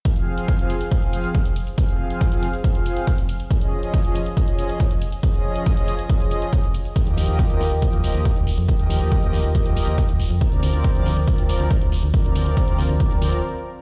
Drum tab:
HH |xx-xxxxxxxxxxxxx|xx-xxxxxxxxxxxxx|xx-xxxxxxxxxxxxx|xx-xxxxxxxxxxxxx|
BD |o---o---o---o---|o---o---o---o---|o---o---o---o---|o---o---o---o---|

HH |xxoxxxo-xxoxxxox|xxoxxxoxxxoxxxox|xxoxxxoxxxoxxxox|xxoxxxoxxxox----|
BD |o---o---o---o---|o---o---o---o---|o---o---o---o---|o---o---o-------|